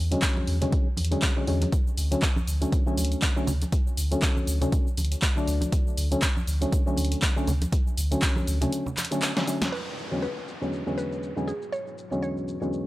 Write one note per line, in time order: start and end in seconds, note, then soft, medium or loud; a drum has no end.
0.00 0.15 E2 loud
0.11 0.58 D3 medium
0.11 0.58 F#3 medium
0.11 0.58 G#3 medium
0.11 0.58 C#4 medium
0.11 closed hi-hat soft
0.22 kick loud
0.22 clap loud
0.22 closed hi-hat medium
0.37 high conga medium
0.47 0.65 E2 medium
0.47 open hi-hat loud
0.61 0.87 D3 medium
0.61 0.87 F#3 medium
0.61 0.88 G#3 medium
0.61 0.88 C#4 medium
0.61 closed hi-hat soft
0.61 low conga medium
0.72 kick loud
0.72 closed hi-hat medium
0.97 1.15 E2 medium
0.97 open hi-hat loud
0.97 high conga medium
1.05 closed hi-hat medium
1.11 1.33 D3 medium
1.11 1.33 F#3 medium
1.11 1.33 G#3 medium
1.11 1.33 C#4 loud
1.11 closed hi-hat soft
1.22 kick loud
1.22 clap loud
1.22 closed hi-hat medium
1.36 1.45 D3 medium
1.36 1.45 F#3 medium
1.36 1.45 G#3 medium
1.36 1.45 C#4 medium
1.47 1.65 E2 medium
1.47 1.71 D3 medium
1.47 1.71 F#3 medium
1.47 1.71 G#3 medium
1.47 1.71 C#4 loud
1.47 open hi-hat medium
1.62 closed hi-hat soft
1.62 high conga loud
1.72 kick loud
1.72 closed hi-hat medium
1.72 shaker soft
1.87 shaker soft
1.97 2.15 D2 loud
1.97 open hi-hat loud
1.97 shaker medium
2.11 2.26 D3 medium
2.11 2.27 F#3 medium
2.11 2.27 A3 medium
2.11 2.27 C#4 medium
2.11 closed hi-hat soft
2.11 shaker soft
2.22 kick loud
2.22 clap loud
2.22 closed hi-hat medium
2.22 shaker soft
2.36 high conga loud
2.36 shaker soft
2.47 2.65 D2 medium
2.47 open hi-hat medium
2.47 shaker medium
2.61 2.83 D3 medium
2.61 2.83 F#3 medium
2.61 2.83 A3 medium
2.61 2.83 C#4 medium
2.61 closed hi-hat soft
2.61 shaker soft
2.72 kick loud
2.72 closed hi-hat medium
2.72 shaker soft
2.86 3.33 D3 loud
2.86 3.33 F#3 medium
2.86 3.33 A3 medium
2.86 3.33 C#4 loud
2.86 shaker soft
2.97 3.15 D2 medium
2.97 open hi-hat loud
2.97 high conga medium
2.97 shaker medium
3.05 closed hi-hat medium
3.12 closed hi-hat soft
3.12 shaker soft
3.22 kick loud
3.22 clap loud
3.22 closed hi-hat medium
3.22 shaker soft
3.36 3.51 D3 loud
3.36 3.52 F#3 medium
3.36 3.52 A3 medium
3.36 3.52 C#4 loud
3.36 shaker soft
3.47 3.65 D2 medium
3.47 open hi-hat medium
3.47 low conga medium
3.47 shaker medium
3.62 closed hi-hat medium
3.62 high conga medium
3.62 shaker soft
3.72 kick loud
3.72 closed hi-hat medium
3.72 shaker soft
3.87 shaker soft
3.97 4.15 D2 loud
3.97 open hi-hat loud
3.97 shaker medium
4.11 4.58 D3 medium
4.11 4.58 F#3 medium
4.11 4.58 A3 medium
4.11 4.58 C#4 medium
4.11 closed hi-hat medium
4.11 shaker soft
4.22 kick loud
4.22 clap loud
4.22 closed hi-hat medium
4.22 shaker soft
4.37 high conga medium
4.37 shaker soft
4.47 4.65 D2 loud
4.47 open hi-hat medium
4.47 shaker medium
4.61 4.87 D3 medium
4.61 4.87 F#3 medium
4.61 4.88 A3 medium
4.61 4.88 C#4 medium
4.61 closed hi-hat medium
4.61 low conga medium
4.61 shaker soft
4.72 kick loud
4.72 closed hi-hat medium
4.72 shaker soft
4.87 shaker soft
4.97 5.15 D2 medium
4.97 open hi-hat loud
4.97 high conga medium
4.97 shaker medium
5.05 closed hi-hat medium
5.12 closed hi-hat medium
5.12 shaker soft
5.22 kick loud
5.22 clap loud
5.22 closed hi-hat medium
5.22 shaker soft
5.36 6.08 D3 medium
5.36 6.08 F#3 medium
5.36 6.08 A3 medium
5.36 6.09 D4 medium
5.36 shaker soft
5.48 5.65 D2 medium
5.48 open hi-hat medium
5.48 shaker medium
5.61 closed hi-hat medium
5.61 high conga medium
5.61 shaker soft
5.72 kick loud
5.72 closed hi-hat medium
5.72 shaker soft
5.87 shaker soft
5.97 6.15 D2 loud
5.97 open hi-hat loud
5.97 shaker medium
6.11 6.26 D3 medium
6.11 6.27 F#3 medium
6.11 6.27 A3 medium
6.11 6.27 C#4 medium
6.11 closed hi-hat medium
6.11 shaker soft
6.22 kick loud
6.22 clap loud
6.22 closed hi-hat medium
6.22 shaker soft
6.37 high conga medium
6.37 shaker soft
6.47 6.65 D2 loud
6.47 open hi-hat medium
6.47 shaker medium
6.61 6.83 D3 medium
6.61 6.83 F#3 medium
6.61 6.83 A3 medium
6.61 6.83 C#4 medium
6.61 closed hi-hat medium
6.61 shaker soft
6.72 kick loud
6.72 closed hi-hat medium
6.72 shaker soft
6.86 7.33 D3 loud
6.86 7.33 F#3 medium
6.86 7.33 A3 medium
6.86 7.33 C#4 loud
6.86 shaker soft
6.97 7.15 D2 medium
6.97 open hi-hat loud
6.97 high conga medium
6.97 shaker medium
7.05 closed hi-hat medium
7.12 closed hi-hat medium
7.12 shaker soft
7.22 kick loud
7.22 clap loud
7.22 closed hi-hat medium
7.22 shaker soft
7.36 7.51 D3 medium
7.36 7.52 F#3 medium
7.36 7.52 A3 medium
7.36 7.52 C#4 loud
7.36 shaker soft
7.47 7.65 D2 medium
7.47 open hi-hat medium
7.47 low conga medium
7.47 shaker medium
7.62 closed hi-hat medium
7.62 high conga medium
7.62 shaker soft
7.72 kick loud
7.72 closed hi-hat medium
7.72 shaker soft
7.87 shaker soft
7.97 8.15 D2 loud
7.97 open hi-hat loud
7.97 shaker medium
8.11 8.58 D3 medium
8.11 8.58 F#3 medium
8.11 8.58 A3 medium
8.11 8.58 C#4 medium
8.11 closed hi-hat medium
8.11 shaker soft
8.22 kick loud
8.22 clap loud
8.22 closed hi-hat medium
8.22 shaker soft
8.36 high conga medium
8.36 shaker soft
8.47 8.65 D2 medium
8.47 open hi-hat medium
8.47 shaker medium
8.61 8.87 D3 medium
8.61 8.87 F#3 medium
8.61 8.88 A3 medium
8.61 8.88 C#4 medium
8.61 closed hi-hat medium
8.61 low conga loud
8.61 shaker soft
8.73 closed hi-hat medium
8.73 shaker soft
8.86 low conga medium
8.86 shaker soft
8.97 clap medium
8.97 open hi-hat loud
8.97 high conga medium
8.97 shaker medium
9.05 closed hi-hat medium
9.11 9.33 D3 loud
9.11 9.33 F#3 medium
9.11 9.33 A3 medium
9.11 9.33 C#4 loud
9.11 closed hi-hat medium
9.11 shaker soft
9.22 clap loud
9.22 closed hi-hat medium
9.22 shaker soft
9.36 9.45 D3 medium
9.36 9.45 F#3 medium
9.36 9.45 A3 medium
9.36 9.45 C#4 medium
9.36 snare medium
9.36 shaker soft
9.47 9.71 D3 medium
9.47 9.71 F#3 medium
9.47 9.71 A3 medium
9.47 9.71 C#4 loud
9.47 open hi-hat medium
9.47 shaker medium
9.62 snare loud
9.62 closed hi-hat medium
9.62 high conga medium
9.62 shaker soft
9.72 12.87 G#3 medium
9.72 12.87 B3 medium
9.72 12.87 E4 medium
9.72 12.87 F#4 medium
9.72 10.06 B4 medium
9.72 12.87 C#6 medium
9.72 crash medium
9.72 downlifter medium
9.72 shaker soft
9.87 shaker soft
9.98 shaker medium
10.11 10.26 E2 medium
10.11 10.27 D3 medium
10.11 10.27 F#3 medium
10.11 10.27 G#3 medium
10.11 10.27 B3 medium
10.11 10.27 C#4 medium
10.11 shaker soft
10.22 10.56 B4 medium
10.22 shaker soft
10.37 shaker soft
10.48 shaker medium
10.61 10.83 E2 medium
10.61 10.83 D3 medium
10.61 10.83 F#3 medium
10.61 10.83 G#3 medium
10.61 10.83 B3 medium
10.61 10.84 C#4 medium
10.61 shaker soft
10.73 shaker soft
10.86 11.33 E2 medium
10.86 11.33 D3 medium
10.86 11.33 F#3 medium
10.86 11.33 G#3 medium
10.86 11.33 B3 medium
10.86 11.34 C#4 loud
10.86 shaker soft
10.98 11.31 B4 medium
10.98 shaker medium
11.12 shaker soft
11.23 shaker soft
11.36 11.52 E2 medium
11.36 11.52 D3 medium
11.36 11.52 F#3 medium
11.36 11.52 G#3 medium
11.36 11.52 B3 medium
11.36 11.52 C#4 loud
11.36 shaker soft
11.48 11.65 G#4 medium
11.48 shaker medium
11.62 shaker soft
11.72 12.06 C#5 medium
11.72 shaker soft
11.87 shaker soft
11.98 shaker medium
12.11 12.58 E2 medium
12.11 12.58 D3 medium
12.11 12.58 F#3 medium
12.11 12.58 G#3 medium
12.11 12.58 B3 medium
12.11 12.58 C#4 medium
12.11 shaker soft
12.22 12.56 C#5 medium
12.22 shaker soft
12.37 shaker soft
12.48 shaker medium
12.61 12.87 E2 medium
12.61 12.87 D3 medium
12.61 12.87 F#3 medium
12.61 12.87 G#3 medium
12.61 12.87 B3 medium
12.61 12.87 C#4 medium
12.61 shaker soft
12.73 shaker soft